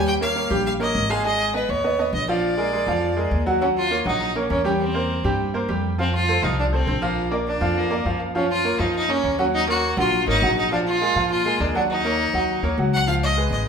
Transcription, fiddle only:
0.07 0.14 G5 loud
0.22 0.63 F5 loud
0.66 0.73 F5 medium
0.81 1.12 D#5 loud
1.10 1.25 F5 loud
1.25 1.52 D#5 loud
1.55 1.71 B4 medium
1.70 2.13 C#5 medium
2.14 2.27 D#5 medium
2.29 3.43 D5 medium
3.62 3.68 C#4 medium
3.77 4.04 F4 loud
4.07 4.38 D#4 medium
4.36 4.50 C#4 medium
4.51 4.64 C#4 medium
4.65 4.72 C#4 medium
4.80 5.35 C4 medium
6.00 6.13 C4 medium
6.15 6.45 F4 loud
6.44 6.58 D#4 medium
6.59 6.65 D4 medium
6.74 7.04 C4 medium
7.03 7.32 A#3 medium
7.47 7.78 D4 medium
7.77 8.21 A#3 medium
8.36 8.49 C#4 medium
8.51 8.81 F4 loud
8.80 8.94 D#4 medium
8.95 9.11 D#4 medium
9.10 9.39 C#4 loud
9.39 9.46 C#4 medium
9.54 9.67 D#4 loud
9.69 9.96 F#4 loud
9.98 10.25 F4 loud
10.28 10.55 D#4 loud
10.58 10.71 D#4 medium
10.73 10.79 D4 loud
10.87 11.28 F4 loud
11.31 11.62 F4 loud
11.61 11.75 D4 medium
11.75 11.82 D4 medium
11.90 12.74 D#4 loud
12.93 13.07 F#5 loud
13.07 13.14 F5 loud
13.23 13.50 D#5 loud
13.52 13.65 D#5 medium

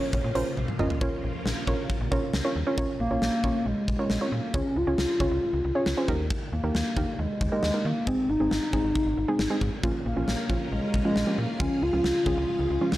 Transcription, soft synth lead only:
0.00 0.57 C#5 loud
3.00 3.68 A#3 medium
3.66 3.98 G#3 medium
3.99 4.28 G#3 loud
4.26 4.34 C4 medium
4.32 4.56 A#3 medium
4.54 4.78 C#4 loud
4.77 6.09 F4 loud
6.53 7.20 A#3 medium
7.19 7.51 G#3 medium
7.52 7.86 G#3 loud
7.85 8.09 A#3 loud
8.07 8.31 C4 loud
8.29 9.61 D#4 loud
10.05 10.68 A#3 medium
10.72 11.03 G#3 medium
11.05 11.39 G#3 loud
11.38 11.61 A#3 loud
11.60 11.84 C#4 loud
11.82 12.98 F4 loud

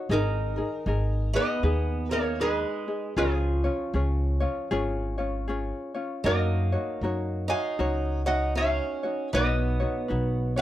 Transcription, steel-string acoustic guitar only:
0.11 1.30 D#3 medium
1.34 2.06 B3 medium
2.11 2.38 A#3 medium
2.41 3.13 G#3 medium
3.19 4.67 F3 medium
6.24 7.44 A#3 medium
7.48 8.21 D#4 medium
8.26 8.54 D#4 medium
8.55 9.28 C#4 medium
9.33 10.53 B3 medium
10.57 10.61 D#4 medium

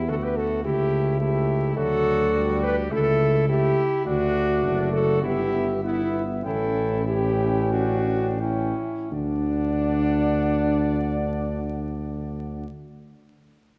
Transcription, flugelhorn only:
0.00 0.10 E4 loud
0.09 0.25 F#4 medium
0.23 0.37 G4 medium
0.38 0.64 F#4 medium
0.65 1.20 E4 loud
1.20 1.77 E4 loud
1.77 2.64 F#4 loud
2.63 2.93 G4 loud
2.92 3.48 E4 loud
3.48 4.05 E4 loud
4.07 4.92 D4 loud
4.93 5.23 F#4 loud
5.24 5.67 E4 loud
5.84 6.23 B3 medium
6.46 7.04 E4 loud
7.07 7.71 E4 medium
7.73 8.39 D4 medium
8.41 9.10 C#4 medium
9.13 12.67 D5 loud

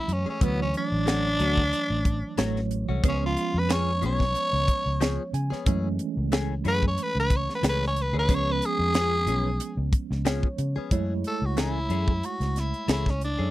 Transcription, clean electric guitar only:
0.26 0.41 A3 soft
0.26 0.41 C#4 soft
0.26 0.41 G#4 medium
0.41 0.62 F#3 medium
0.41 0.62 A3 medium
0.41 0.63 C#4 medium
0.41 0.63 F#4 medium
1.06 1.27 F#3 medium
1.06 1.28 A3 medium
1.06 1.28 C#4 medium
1.06 1.28 F#4 medium
1.39 1.60 F#3 medium
1.39 1.61 A3 medium
1.39 1.61 C#4 medium
1.39 1.62 F#4 medium
2.38 2.59 F#3 loud
2.38 2.59 A3 medium
2.38 2.60 C#4 loud
2.38 2.60 F#4 medium
2.89 3.04 A3 soft
2.89 3.04 C#4 soft
2.89 3.04 F#4 medium
3.03 3.25 F3 medium
3.03 3.25 B3 medium
3.03 3.25 C#4 medium
3.03 3.26 G#4 medium
3.69 3.90 F3 medium
3.69 3.91 B3 medium
3.69 3.91 C#4 medium
3.69 3.91 G#4 medium
4.01 4.23 F3 medium
4.01 4.24 B3 medium
4.01 4.24 C#4 medium
4.01 4.24 G#4 medium
5.01 5.22 F3 medium
5.01 5.22 B3 medium
5.01 5.22 C#4 medium
5.01 5.22 G#4 loud
5.50 5.66 B3 soft
5.50 5.66 C#4 medium
5.50 5.66 G#4 medium
5.66 5.87 E3 medium
5.66 5.88 A3 medium
5.66 5.88 C#4 medium
5.66 5.88 G#4 medium
6.32 6.53 E3 medium
6.32 6.53 A3 medium
6.32 6.54 C#4 medium
6.32 6.54 G#4 loud
6.64 6.86 E3 medium
6.64 6.86 A3 medium
6.64 6.86 C#4 medium
6.64 6.87 G#4 medium
7.63 7.84 E3 medium
7.63 7.84 A3 medium
7.63 7.85 C#4 medium
7.63 7.85 G#4 medium
8.14 8.29 A3 soft
8.14 8.29 C#4 soft
8.14 8.29 G#4 medium
8.29 8.50 F3 medium
8.29 8.50 B3 medium
8.29 8.50 C#4 medium
8.29 8.51 G#4 medium
8.95 9.16 F3 medium
8.95 9.16 B3 medium
8.95 9.16 C#4 medium
8.95 9.16 G#4 medium
9.27 9.48 F3 medium
9.27 9.49 B3 medium
9.27 9.49 C#4 medium
9.27 9.49 G#4 medium
10.25 10.46 F3 loud
10.25 10.47 B3 medium
10.25 10.47 C#4 loud
10.25 10.47 G#4 loud
10.76 10.91 B3 medium
10.76 10.91 C#4 medium
10.76 10.91 G#4 medium
10.91 11.12 E3 medium
10.91 11.13 A3 medium
10.91 11.13 C#4 medium
10.91 11.13 G#4 medium
11.57 11.78 E3 medium
11.57 11.78 A3 medium
11.57 11.78 C#4 medium
11.57 11.79 G#4 medium
11.89 12.10 E3 soft
11.89 12.11 A3 medium
11.89 12.11 C#4 medium
11.89 12.12 G#4 medium
12.88 13.09 E3 medium
12.88 13.09 A3 medium
12.88 13.10 C#4 medium
12.88 13.10 G#4 medium
13.39 13.51 A3 soft
13.39 13.51 C#4 soft
13.39 13.51 G#4 soft

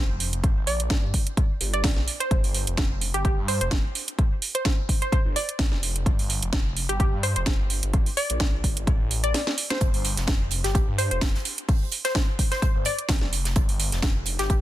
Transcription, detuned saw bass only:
0.10 0.42 F1 medium
0.44 0.65 G1 medium
0.67 0.89 A#1 loud
0.90 1.12 G2 medium
1.61 1.83 G1 medium
1.84 2.06 A#1 loud
2.31 2.42 G1 loud
2.44 2.65 G1 medium
2.67 3.12 F1 medium
3.14 3.36 G1 medium
3.37 3.59 G2 medium
3.61 3.82 F1 medium
5.25 5.34 G1 medium
5.59 5.70 A#1 loud
5.72 6.04 F1 medium
6.06 6.17 G1 medium
6.19 6.40 G1 medium
6.42 6.87 F1 medium
6.89 7.11 G1 loud
7.13 7.34 G2 medium
7.36 7.57 F1 medium
7.59 7.81 G1 medium
7.83 8.04 G1 medium
8.30 8.62 A#1 loud
8.64 8.86 G1 loud
8.87 9.32 A1 loud
9.81 9.92 G1 loud
9.94 10.15 G1 medium
10.17 10.62 F1 loud
10.64 10.86 G1 medium
10.88 11.09 G2 loud
11.11 11.32 F1 medium
12.75 12.84 G1 medium
13.09 13.20 A#1 loud
13.22 13.54 F1 loud
13.56 13.67 G1 loud
13.69 13.90 G1 medium
13.92 14.37 F1 loud
14.39 14.61 G1 loud

